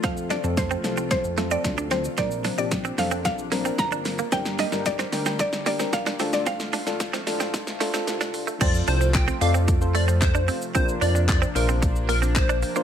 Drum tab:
CC |----------------|----------------|----------------|----------------|
HH |x-x-x-x-x-x-x-x-|x-o-x-o-x-o-x-o-|x-o-x-o-x-o-x-o-|x-o-x-o-x-o-x-o-|
SH |xxxxxxxxxxxxxxxx|xxxxxxxxxxxxxxxx|xxxxxxxxxxxxxxxx|xxxxxxxxxxxxxxxx|
CP |----------------|----------------|----------------|----------------|
SD |o-o-o-o-o-o-o-o-|o-o-o-o-o-o-o-o-|oooooooooooooooo|oooooooooooooo--|
BD |o---o---o---o---|o---o---o---o---|o---o---o---o---|o---o---o-------|

CC |x---------------|----------------|
HH |x-o-x-o-x-o-x-o-|x-o-x-o-x-o-x-o-|
SH |xxxxxxxxxxxxxxxx|xxxxxxxxxxxxxxxx|
CP |----x-------x---|----x-------x---|
SD |----------------|----------------|
BD |o---o---o---o---|o---o---o---o---|